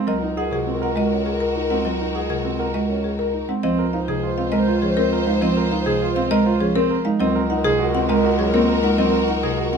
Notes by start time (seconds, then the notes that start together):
Already playing: G#3 C4 F5
0.07 C#2 F#3 F#4 A#4 D#5
0.23 D#4
0.37 G#4 A#4 F#5
0.51 C3 F#4 G#4
0.67 C4 A#4
0.82 A#4 F#5
0.96 G#3 F#4 D#5
1.01 A#4
1.11 C#4
1.26 G#4
1.32 A#4
1.40 A#4
1.56 D#4
1.63 A#4
1.70 G#3 C4 F#5
1.85 F#3 A#4 D#5
1.94 A#4
2.01 D#4
2.15 G#4 F#5
2.25 A#4
2.30 C3 F#4 G#4
2.45 C4
2.55 A#4 F#5
2.60 A#4
2.74 G#3 F#4 D#5
2.86 C#4 A#4
3.04 G#4
3.18 A#4
3.34 D#4
3.49 G#3 C4 F#5
3.63 C#2 F3 C4 F4 C5 D#5
3.79 A#4
3.93 D#4 C5 F5
4.08 C3 G#4
4.23 F4 C5
4.38 C4 F5
4.52 G#3 A#4 D#5
4.57 C5
4.68 F4
4.82 F3 C#4 G#4
4.88 C5
4.97 C4 A#4
5.12 A#4
5.20 C5
5.27 G#3 D#4 F5
5.42 F3 C4 D#5
5.50 C5
5.57 A#4
5.71 D#4 F5
5.80 C5
5.86 C3 G#4
6.02 F4
6.11 C5
6.16 C4 F5
6.31 G#3 A#4 D#5
6.43 F4 C5
6.60 F3 C#4 G#4
6.74 C4 A#4 C5
6.90 A#4
7.05 G#3 D#4 F5
7.19 C#2 F#3 C4 F#4 A#4 D#5
7.35 A#4
7.50 D#4 A#4 F#5
7.64 C3 G#4
7.79 F#4 A#4
7.94 C4 F#5
8.09 G#3 A#4 D#5
8.24 F#4
8.39 F#3 C#4 G#4
8.44 A#4
8.54 A#3 C4 A#4
8.68 A#4
8.75 A#4
8.83 G#3 D#4 F#5
8.98 F#3 C4 D#5
9.06 A#4
9.13 A#4
9.28 D#4 F#5
9.36 A#4
9.43 C3 G#4
9.58 F#4
9.67 A#4
9.72 C4 F#5